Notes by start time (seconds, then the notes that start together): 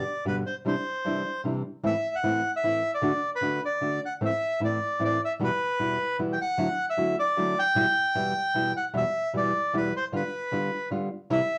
Already playing: D5
0.25 G2 B2 D3 G3 B3 G4 B4
0.46 C5
0.65 C3 E3 G3 D4 E4 C5
1.05 C3 E3 G3 D4 E4
1.44 C3 E3 G3 D4 E4
1.84 A2 E3 A3 C4 E4 E5
2.15 F#5
2.23 A2 E3 A3 C4 E4
2.56 E5
2.64 A2 E3 A3 C4 E4
2.95 D5
3.02 D3 A3 D4 F#4
3.35 B4
3.41 D3 A3 D4 F#4
3.65 D5
3.81 D3 A3 D4 F#4
4.06 F#5
4.21 A2 E3 A3 C4 E4
4.25 E5
4.60 A2 E3 A3 C4 E4
4.65 D5
4.99 A2 E3 A3 C4 E4
5.05 D5
5.25 E5
5.40 E2 B2 E3 G3 B3 E4
5.44 B4
5.79 E2 B2 E3 G3 B3 E4
6.19 E2 B2 E3 G3 B3 E4
6.33 G5
6.41 F#5
6.58 D3 F#3 A3 E4 F#4
6.90 E5
6.97 D3 F#3 A3 E4 F#4
7.19 D5
7.36 D3 F#3 A3 E4 F#4
7.59 G5
7.75 E2 B2 E3 G3 B3 E4
8.15 E2 B2 E3 G3 B3 E4
8.54 E2 B2 E3 G3 B3 E4
8.77 F#5
8.94 E2 B2 E3 G3 B3 E4 E5
9.33 E2 B2 E3 G3 B3 E4 D5
9.73 E2 B2 E3 G3 B3 E4 B4
9.96 C5
10.12 D3 G3 B3 F4 B4
10.52 D3 G3 B3 F4
10.91 D3 G3 B3 F4
11.30 C3 E3 G3 C4 E4 E5